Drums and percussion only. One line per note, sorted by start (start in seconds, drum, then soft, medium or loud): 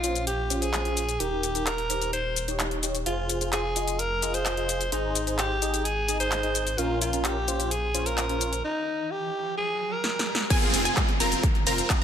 0.04 closed hi-hat medium
0.04 shaker medium
0.15 closed hi-hat soft
0.15 shaker soft
0.27 closed hi-hat medium
0.27 shaker soft
0.50 closed hi-hat medium
0.50 shaker medium
0.62 closed hi-hat soft
0.62 shaker soft
0.73 clap loud
0.73 closed hi-hat medium
0.73 shaker soft
0.85 closed hi-hat soft
0.97 closed hi-hat medium
0.97 shaker medium
1.09 closed hi-hat soft
1.09 shaker soft
1.20 closed hi-hat medium
1.20 shaker soft
1.43 closed hi-hat medium
1.43 shaker medium
1.55 closed hi-hat soft
1.55 shaker soft
1.66 clap loud
1.66 closed hi-hat medium
1.66 shaker soft
1.78 closed hi-hat soft
1.90 closed hi-hat medium
1.90 shaker medium
2.02 closed hi-hat soft
2.02 shaker soft
2.13 closed hi-hat medium
2.13 shaker soft
2.36 closed hi-hat medium
2.36 shaker medium
2.48 closed hi-hat soft
2.48 shaker soft
2.60 clap loud
2.60 closed hi-hat medium
2.60 shaker soft
2.71 closed hi-hat soft
2.83 closed hi-hat medium
2.83 shaker medium
2.95 closed hi-hat soft
2.95 shaker soft
3.06 closed hi-hat medium
3.06 shaker soft
3.29 closed hi-hat medium
3.29 shaker medium
3.41 closed hi-hat soft
3.41 shaker soft
3.53 clap loud
3.53 closed hi-hat medium
3.53 shaker soft
3.76 closed hi-hat medium
3.76 shaker medium
3.88 closed hi-hat soft
3.88 shaker soft
3.99 closed hi-hat medium
3.99 shaker soft
4.22 closed hi-hat medium
4.22 shaker medium
4.34 closed hi-hat soft
4.34 shaker soft
4.46 clap loud
4.46 closed hi-hat medium
4.46 shaker soft
4.57 closed hi-hat soft
4.69 closed hi-hat medium
4.69 shaker medium
4.81 closed hi-hat soft
4.81 shaker soft
4.92 closed hi-hat medium
4.92 shaker soft
5.15 closed hi-hat medium
5.15 shaker medium
5.27 closed hi-hat soft
5.27 shaker soft
5.39 clap loud
5.39 closed hi-hat medium
5.39 shaker soft
5.62 closed hi-hat medium
5.62 shaker medium
5.74 closed hi-hat soft
5.74 shaker soft
5.85 closed hi-hat medium
5.85 shaker soft
6.09 closed hi-hat medium
6.09 shaker medium
6.20 closed hi-hat soft
6.20 shaker soft
6.32 clap loud
6.32 closed hi-hat medium
6.32 shaker soft
6.43 closed hi-hat soft
6.55 closed hi-hat medium
6.55 shaker medium
6.67 closed hi-hat soft
6.67 shaker soft
6.78 closed hi-hat medium
6.78 shaker soft
7.02 closed hi-hat medium
7.02 shaker medium
7.13 closed hi-hat medium
7.13 shaker soft
7.25 clap loud
7.25 closed hi-hat medium
7.25 shaker soft
7.48 closed hi-hat medium
7.48 shaker medium
7.60 closed hi-hat medium
7.60 shaker soft
7.71 closed hi-hat medium
7.71 shaker soft
7.95 closed hi-hat medium
7.95 shaker medium
8.06 closed hi-hat soft
8.06 shaker soft
8.18 clap loud
8.18 closed hi-hat medium
8.18 shaker soft
8.29 closed hi-hat soft
8.41 closed hi-hat medium
8.41 shaker medium
8.53 closed hi-hat soft
8.53 shaker soft
10.04 snare medium
10.19 snare medium
10.35 snare medium
10.50 kick loud
10.50 closed hi-hat medium
10.50 crash loud
10.50 shaker soft
10.62 closed hi-hat soft
10.74 open hi-hat loud
10.74 shaker medium
10.85 closed hi-hat medium
10.85 shaker soft
10.97 kick loud
10.97 clap loud
10.97 closed hi-hat medium
10.97 shaker soft
11.09 closed hi-hat soft
11.20 open hi-hat medium
11.20 shaker medium
11.32 closed hi-hat medium
11.32 shaker soft
11.43 kick loud
11.43 closed hi-hat medium
11.43 shaker soft
11.55 closed hi-hat soft
11.67 open hi-hat loud
11.67 shaker medium
11.78 closed hi-hat medium
11.78 shaker soft
11.90 kick loud
11.90 clap loud
11.90 closed hi-hat medium
11.90 shaker soft